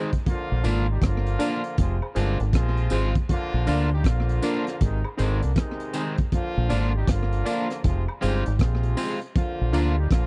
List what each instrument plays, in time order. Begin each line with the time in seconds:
Already playing: clean electric guitar G#3 C4, synth stab C5
0.13 kick, closed hi-hat
0.26 horn section D3 F3 A#3 F4, kick, closed hi-hat
0.52 fingered electric bass A#1
0.63 fingered electric bass G#1, clean electric guitar A#3 D4 F4, synth stab D4 F4 A#4 D5, closed hi-hat, tambourine
0.89 horn section G3 D#4 G4
1.02 fingered electric bass G1, horn section D3 F3 A#3 F4, kick, cross-stick, closed hi-hat
1.27 closed hi-hat
1.39 clean electric guitar A#3 D4 F4, synth stab D4 F4 A#4 D5, closed hi-hat, tambourine
1.64 closed hi-hat
1.78 fingered electric bass F1, horn section C3 F3 G#3 F4, kick, closed hi-hat
2.02 synth stab G#4 C5, high woodblock
2.15 fingered electric bass G1, horn section D3 A#3 D4, clean electric guitar G#3 C4 F4, synth stab C4 F4 G#4 C5, closed hi-hat, tambourine
2.40 fingered electric bass G#1, closed hi-hat
2.53 fingered electric bass A#1, horn section C3 F3 G#3 F4, kick, cross-stick, closed hi-hat
2.77 closed hi-hat
2.90 fingered electric bass G#1, clean electric guitar G#3 C4 F4, synth stab C4 F4 G#4 C5, closed hi-hat, tambourine
3.15 kick, closed hi-hat
3.29 horn section D3 F3 A#3 F4, kick, closed hi-hat
3.54 fingered electric bass A#1
3.67 fingered electric bass D2, clean electric guitar A#3 D4 F4, synth stab D4 F4 A#4 D5, closed hi-hat, tambourine
3.92 horn section G3 D#4 G4
4.04 fingered electric bass A#1, horn section D3 F3 A#3 F4, kick, cross-stick, closed hi-hat
4.29 closed hi-hat
4.42 clean electric guitar A#3 D4 F4, synth stab D4 F4 A#4 D5, cross-stick, closed hi-hat, tambourine
4.67 cross-stick, closed hi-hat
4.81 fingered electric bass G#1, horn section C3 D#3 G#3 D#4, kick, closed hi-hat
5.04 synth stab G#4 C5, high woodblock
5.17 fingered electric bass G#1, horn section D3 A#3 D4, clean electric guitar D#3 G#3 C4, synth stab C4 D#4 G#4 C5, closed hi-hat, tambourine
5.42 fingered electric bass C2, closed hi-hat
5.56 horn section C3 D#3 G#3 D#4, kick, cross-stick, closed hi-hat
5.80 closed hi-hat
5.93 clean electric guitar D#3 G#3 C4, synth stab C4 D#4 G#4 C5, closed hi-hat, tambourine
6.17 kick, closed hi-hat
6.32 horn section D3 F3 A#3 F4, kick, closed hi-hat
6.57 fingered electric bass A#1
6.69 fingered electric bass G#1, clean electric guitar A#3 D4 F4, synth stab D4 F4 A#4 D5, closed hi-hat, tambourine
6.95 horn section G3 D#4 G4
7.07 fingered electric bass G1, horn section D3 F3 A#3 F4, kick, cross-stick, closed hi-hat
7.33 closed hi-hat
7.45 clean electric guitar A#3 D4 F4, synth stab D4 F4 A#4 D5, closed hi-hat, tambourine
7.70 cross-stick, closed hi-hat
7.84 fingered electric bass F1, horn section C3 F3 G#3 F4, kick, closed hi-hat
8.08 synth stab G#4 C5, high woodblock
8.21 fingered electric bass G1, horn section G3 D#4 G4, clean electric guitar G#3 C4 F4, synth stab C4 F4 G#4 C5, closed hi-hat, tambourine
8.46 fingered electric bass G#1, closed hi-hat
8.59 fingered electric bass A#1, horn section C3 F3 G#3 F4, kick, cross-stick, closed hi-hat
8.83 closed hi-hat
8.97 clean electric guitar G#3 C4 F4, synth stab C4 F4 G#4 C5, open hi-hat, tambourine
9.21 closed hi-hat
9.36 horn section D3 F3 A#3 F4, kick, closed hi-hat
9.61 fingered electric bass A#1
9.73 fingered electric bass D2, clean electric guitar A#3 D4 F4, synth stab D4 F4 A#4 D5, closed hi-hat, tambourine
9.97 horn section G3 D#4 G4
10.10 fingered electric bass A#1, horn section D3 F3 A#3 F4, kick, cross-stick, closed hi-hat